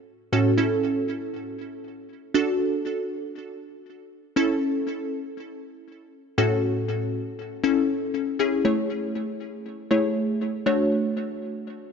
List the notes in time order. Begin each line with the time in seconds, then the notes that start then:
0.32 A2 C#4 F#4 A4
0.58 C#4 E4 A4
2.34 D4 F#4 A4
4.36 C#4 E4 A4
6.38 A2 C#4 F#4 A4
7.64 C#4 E4 A4
8.39 C#4 E4 G#4
8.65 A3 E4 G#4 C#5
9.91 A3 E4 G#4 C#5
10.66 A3 D4 F#4 C#5